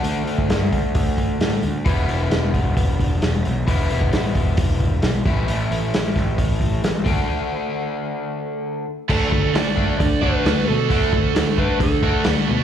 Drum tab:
CC |----------------|----------------|----------------|----------------|
HH |o-o-o-o-o-o-o-o-|o-o-o-o-o-o-o-o-|o-o-o-o-o-o-o-o-|o-o-o-o-o-o-o-o-|
SD |----o-------o---|----o-------o---|----o-------o---|----o-o-----o---|
BD |---o--o-o-o-----|o-----o-o-o-----|o--o--o-o-o---o-|------o-o-o---o-|

CC |----------------|x---------------|----------------|
HH |----------------|----o---o---o---|o---o---o---o---|
SD |----------------|----o-------o---|----o-------o---|
BD |----------------|o-o---o-o-o-----|o-o---o-o-o-----|